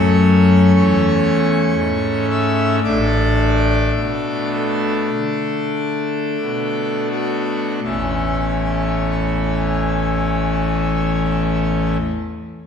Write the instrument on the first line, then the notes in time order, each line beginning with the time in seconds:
pipe organ
Already playing: F#2 A3 C#4 C#5
0.75 E2 C#5
1.77 G#2
2.30 E5
2.84 A1 A2 A3 D4 D5
3.95 B2
4.53 A4
5.12 D3
6.41 B2
7.11 F#4
7.83 A1 E2 E3 A3 C#4